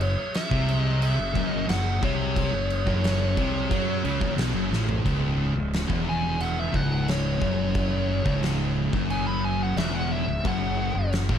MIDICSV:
0, 0, Header, 1, 6, 480
1, 0, Start_track
1, 0, Key_signature, 4, "minor"
1, 0, Tempo, 673401
1, 1679, Time_signature, 4, 2, 24, 8
1, 8115, End_track
2, 0, Start_track
2, 0, Title_t, "Lead electric guitar"
2, 0, Program_c, 0, 29
2, 13, Note_on_c, 0, 73, 89
2, 231, Note_off_c, 0, 73, 0
2, 260, Note_on_c, 0, 76, 96
2, 574, Note_off_c, 0, 76, 0
2, 574, Note_on_c, 0, 75, 96
2, 702, Note_off_c, 0, 75, 0
2, 732, Note_on_c, 0, 76, 94
2, 1046, Note_off_c, 0, 76, 0
2, 1046, Note_on_c, 0, 75, 94
2, 1177, Note_off_c, 0, 75, 0
2, 1209, Note_on_c, 0, 78, 98
2, 1451, Note_off_c, 0, 78, 0
2, 1455, Note_on_c, 0, 73, 75
2, 3097, Note_off_c, 0, 73, 0
2, 4340, Note_on_c, 0, 80, 82
2, 4563, Note_off_c, 0, 80, 0
2, 4570, Note_on_c, 0, 78, 96
2, 4700, Note_off_c, 0, 78, 0
2, 4700, Note_on_c, 0, 76, 94
2, 4815, Note_off_c, 0, 76, 0
2, 4815, Note_on_c, 0, 78, 75
2, 5041, Note_off_c, 0, 78, 0
2, 5054, Note_on_c, 0, 73, 89
2, 5981, Note_off_c, 0, 73, 0
2, 6492, Note_on_c, 0, 80, 103
2, 6605, Note_off_c, 0, 80, 0
2, 6613, Note_on_c, 0, 83, 93
2, 6734, Note_off_c, 0, 83, 0
2, 6734, Note_on_c, 0, 80, 89
2, 6846, Note_off_c, 0, 80, 0
2, 6864, Note_on_c, 0, 78, 84
2, 6968, Note_off_c, 0, 78, 0
2, 6971, Note_on_c, 0, 76, 97
2, 7090, Note_off_c, 0, 76, 0
2, 7090, Note_on_c, 0, 78, 89
2, 7210, Note_off_c, 0, 78, 0
2, 7210, Note_on_c, 0, 76, 80
2, 7441, Note_off_c, 0, 76, 0
2, 7464, Note_on_c, 0, 78, 107
2, 7921, Note_off_c, 0, 78, 0
2, 8115, End_track
3, 0, Start_track
3, 0, Title_t, "Tonewheel organ"
3, 0, Program_c, 1, 16
3, 0, Note_on_c, 1, 54, 63
3, 0, Note_on_c, 1, 68, 75
3, 0, Note_on_c, 1, 73, 64
3, 3565, Note_off_c, 1, 54, 0
3, 3568, Note_off_c, 1, 68, 0
3, 3571, Note_off_c, 1, 73, 0
3, 3605, Note_on_c, 1, 51, 73
3, 3606, Note_on_c, 1, 56, 61
3, 3612, Note_on_c, 1, 49, 70
3, 5507, Note_off_c, 1, 56, 0
3, 5524, Note_on_c, 1, 54, 63
3, 7420, Note_off_c, 1, 51, 0
3, 7424, Note_off_c, 1, 49, 0
3, 7443, Note_on_c, 1, 68, 79
3, 7443, Note_on_c, 1, 73, 63
3, 8115, Note_off_c, 1, 54, 0
3, 8115, Note_off_c, 1, 68, 0
3, 8115, Note_off_c, 1, 73, 0
3, 8115, End_track
4, 0, Start_track
4, 0, Title_t, "Distorted electric guitar"
4, 0, Program_c, 2, 30
4, 0, Note_on_c, 2, 42, 86
4, 74, Note_off_c, 2, 42, 0
4, 364, Note_on_c, 2, 48, 112
4, 835, Note_off_c, 2, 48, 0
4, 838, Note_on_c, 2, 42, 75
4, 948, Note_off_c, 2, 42, 0
4, 956, Note_on_c, 2, 42, 94
4, 1187, Note_off_c, 2, 42, 0
4, 1196, Note_on_c, 2, 42, 80
4, 1390, Note_off_c, 2, 42, 0
4, 1434, Note_on_c, 2, 48, 107
4, 1788, Note_on_c, 2, 42, 85
4, 1789, Note_off_c, 2, 48, 0
4, 1985, Note_off_c, 2, 42, 0
4, 2033, Note_on_c, 2, 42, 107
4, 2388, Note_off_c, 2, 42, 0
4, 2395, Note_on_c, 2, 48, 109
4, 2629, Note_off_c, 2, 48, 0
4, 2635, Note_on_c, 2, 54, 109
4, 2869, Note_off_c, 2, 54, 0
4, 2873, Note_on_c, 2, 49, 94
4, 2988, Note_off_c, 2, 49, 0
4, 2991, Note_on_c, 2, 42, 108
4, 3108, Note_off_c, 2, 42, 0
4, 3115, Note_on_c, 2, 47, 109
4, 3229, Note_off_c, 2, 47, 0
4, 3235, Note_on_c, 2, 42, 113
4, 3350, Note_off_c, 2, 42, 0
4, 3357, Note_on_c, 2, 45, 99
4, 3590, Note_off_c, 2, 45, 0
4, 3596, Note_on_c, 2, 37, 105
4, 3948, Note_off_c, 2, 37, 0
4, 3956, Note_on_c, 2, 37, 81
4, 4150, Note_off_c, 2, 37, 0
4, 4199, Note_on_c, 2, 40, 113
4, 4793, Note_off_c, 2, 40, 0
4, 4796, Note_on_c, 2, 37, 94
4, 5272, Note_off_c, 2, 37, 0
4, 5279, Note_on_c, 2, 42, 104
4, 5874, Note_off_c, 2, 42, 0
4, 5878, Note_on_c, 2, 37, 100
4, 6354, Note_off_c, 2, 37, 0
4, 6360, Note_on_c, 2, 42, 92
4, 6955, Note_off_c, 2, 42, 0
4, 6958, Note_on_c, 2, 40, 101
4, 7315, Note_off_c, 2, 40, 0
4, 7321, Note_on_c, 2, 37, 64
4, 7437, Note_off_c, 2, 37, 0
4, 7440, Note_on_c, 2, 42, 114
4, 7793, Note_off_c, 2, 42, 0
4, 7802, Note_on_c, 2, 42, 77
4, 7996, Note_off_c, 2, 42, 0
4, 8049, Note_on_c, 2, 45, 101
4, 8115, Note_off_c, 2, 45, 0
4, 8115, End_track
5, 0, Start_track
5, 0, Title_t, "Fingered electric bass"
5, 0, Program_c, 3, 33
5, 0, Note_on_c, 3, 30, 89
5, 108, Note_off_c, 3, 30, 0
5, 367, Note_on_c, 3, 36, 98
5, 815, Note_off_c, 3, 36, 0
5, 838, Note_on_c, 3, 30, 85
5, 951, Note_off_c, 3, 30, 0
5, 965, Note_on_c, 3, 30, 106
5, 1186, Note_off_c, 3, 30, 0
5, 1199, Note_on_c, 3, 30, 94
5, 1422, Note_off_c, 3, 30, 0
5, 1443, Note_on_c, 3, 36, 100
5, 1776, Note_off_c, 3, 36, 0
5, 1804, Note_on_c, 3, 30, 84
5, 2024, Note_off_c, 3, 30, 0
5, 2045, Note_on_c, 3, 30, 98
5, 2377, Note_off_c, 3, 30, 0
5, 2405, Note_on_c, 3, 36, 93
5, 2625, Note_off_c, 3, 36, 0
5, 2643, Note_on_c, 3, 42, 103
5, 2864, Note_off_c, 3, 42, 0
5, 2884, Note_on_c, 3, 37, 106
5, 2993, Note_off_c, 3, 37, 0
5, 3003, Note_on_c, 3, 30, 100
5, 3112, Note_off_c, 3, 30, 0
5, 3121, Note_on_c, 3, 35, 109
5, 3232, Note_off_c, 3, 35, 0
5, 3235, Note_on_c, 3, 30, 86
5, 3348, Note_off_c, 3, 30, 0
5, 3358, Note_on_c, 3, 33, 101
5, 3581, Note_off_c, 3, 33, 0
5, 3605, Note_on_c, 3, 25, 81
5, 3937, Note_off_c, 3, 25, 0
5, 3961, Note_on_c, 3, 25, 75
5, 4184, Note_off_c, 3, 25, 0
5, 4202, Note_on_c, 3, 28, 98
5, 4773, Note_off_c, 3, 28, 0
5, 4804, Note_on_c, 3, 25, 97
5, 5255, Note_off_c, 3, 25, 0
5, 5284, Note_on_c, 3, 30, 94
5, 5855, Note_off_c, 3, 30, 0
5, 5886, Note_on_c, 3, 25, 97
5, 6337, Note_off_c, 3, 25, 0
5, 6368, Note_on_c, 3, 30, 93
5, 6938, Note_off_c, 3, 30, 0
5, 6959, Note_on_c, 3, 28, 113
5, 7297, Note_off_c, 3, 28, 0
5, 7326, Note_on_c, 3, 25, 74
5, 7437, Note_off_c, 3, 25, 0
5, 7447, Note_on_c, 3, 30, 86
5, 7781, Note_off_c, 3, 30, 0
5, 7807, Note_on_c, 3, 30, 72
5, 8030, Note_off_c, 3, 30, 0
5, 8049, Note_on_c, 3, 33, 91
5, 8115, Note_off_c, 3, 33, 0
5, 8115, End_track
6, 0, Start_track
6, 0, Title_t, "Drums"
6, 5, Note_on_c, 9, 49, 62
6, 76, Note_off_c, 9, 49, 0
6, 245, Note_on_c, 9, 49, 87
6, 253, Note_on_c, 9, 38, 114
6, 316, Note_off_c, 9, 49, 0
6, 324, Note_off_c, 9, 38, 0
6, 366, Note_on_c, 9, 36, 123
6, 437, Note_off_c, 9, 36, 0
6, 488, Note_on_c, 9, 49, 73
6, 559, Note_off_c, 9, 49, 0
6, 726, Note_on_c, 9, 49, 92
6, 797, Note_off_c, 9, 49, 0
6, 965, Note_on_c, 9, 36, 111
6, 967, Note_on_c, 9, 49, 68
6, 1037, Note_off_c, 9, 36, 0
6, 1038, Note_off_c, 9, 49, 0
6, 1205, Note_on_c, 9, 49, 92
6, 1214, Note_on_c, 9, 38, 106
6, 1276, Note_off_c, 9, 49, 0
6, 1285, Note_off_c, 9, 38, 0
6, 1445, Note_on_c, 9, 36, 120
6, 1447, Note_on_c, 9, 49, 72
6, 1516, Note_off_c, 9, 36, 0
6, 1518, Note_off_c, 9, 49, 0
6, 1685, Note_on_c, 9, 36, 108
6, 1686, Note_on_c, 9, 49, 97
6, 1756, Note_off_c, 9, 36, 0
6, 1757, Note_off_c, 9, 49, 0
6, 1927, Note_on_c, 9, 49, 64
6, 1998, Note_off_c, 9, 49, 0
6, 2045, Note_on_c, 9, 36, 101
6, 2116, Note_off_c, 9, 36, 0
6, 2168, Note_on_c, 9, 49, 86
6, 2176, Note_on_c, 9, 38, 118
6, 2239, Note_off_c, 9, 49, 0
6, 2248, Note_off_c, 9, 38, 0
6, 2405, Note_on_c, 9, 36, 106
6, 2408, Note_on_c, 9, 49, 64
6, 2476, Note_off_c, 9, 36, 0
6, 2479, Note_off_c, 9, 49, 0
6, 2645, Note_on_c, 9, 36, 112
6, 2647, Note_on_c, 9, 49, 76
6, 2716, Note_off_c, 9, 36, 0
6, 2718, Note_off_c, 9, 49, 0
6, 2884, Note_on_c, 9, 49, 64
6, 2955, Note_off_c, 9, 49, 0
6, 3003, Note_on_c, 9, 36, 112
6, 3075, Note_off_c, 9, 36, 0
6, 3122, Note_on_c, 9, 49, 78
6, 3131, Note_on_c, 9, 38, 127
6, 3194, Note_off_c, 9, 49, 0
6, 3202, Note_off_c, 9, 38, 0
6, 3371, Note_on_c, 9, 38, 71
6, 3442, Note_off_c, 9, 38, 0
6, 3484, Note_on_c, 9, 43, 101
6, 3555, Note_off_c, 9, 43, 0
6, 3605, Note_on_c, 9, 36, 114
6, 3607, Note_on_c, 9, 49, 69
6, 3676, Note_off_c, 9, 36, 0
6, 3678, Note_off_c, 9, 49, 0
6, 4087, Note_on_c, 9, 49, 63
6, 4095, Note_on_c, 9, 38, 118
6, 4158, Note_off_c, 9, 49, 0
6, 4167, Note_off_c, 9, 38, 0
6, 4204, Note_on_c, 9, 36, 108
6, 4276, Note_off_c, 9, 36, 0
6, 4565, Note_on_c, 9, 49, 65
6, 4636, Note_off_c, 9, 49, 0
6, 4806, Note_on_c, 9, 36, 102
6, 4877, Note_off_c, 9, 36, 0
6, 5048, Note_on_c, 9, 49, 65
6, 5057, Note_on_c, 9, 38, 118
6, 5120, Note_off_c, 9, 49, 0
6, 5128, Note_off_c, 9, 38, 0
6, 5286, Note_on_c, 9, 36, 121
6, 5357, Note_off_c, 9, 36, 0
6, 5523, Note_on_c, 9, 49, 69
6, 5525, Note_on_c, 9, 36, 123
6, 5595, Note_off_c, 9, 49, 0
6, 5596, Note_off_c, 9, 36, 0
6, 5886, Note_on_c, 9, 36, 114
6, 5957, Note_off_c, 9, 36, 0
6, 6008, Note_on_c, 9, 49, 57
6, 6017, Note_on_c, 9, 38, 111
6, 6079, Note_off_c, 9, 49, 0
6, 6088, Note_off_c, 9, 38, 0
6, 6367, Note_on_c, 9, 36, 108
6, 6438, Note_off_c, 9, 36, 0
6, 6488, Note_on_c, 9, 49, 61
6, 6560, Note_off_c, 9, 49, 0
6, 6966, Note_on_c, 9, 49, 61
6, 6974, Note_on_c, 9, 38, 119
6, 7037, Note_off_c, 9, 49, 0
6, 7046, Note_off_c, 9, 38, 0
6, 7449, Note_on_c, 9, 36, 118
6, 7451, Note_on_c, 9, 49, 63
6, 7520, Note_off_c, 9, 36, 0
6, 7522, Note_off_c, 9, 49, 0
6, 7930, Note_on_c, 9, 49, 62
6, 7939, Note_on_c, 9, 38, 110
6, 8001, Note_off_c, 9, 49, 0
6, 8010, Note_off_c, 9, 38, 0
6, 8049, Note_on_c, 9, 36, 119
6, 8115, Note_off_c, 9, 36, 0
6, 8115, End_track
0, 0, End_of_file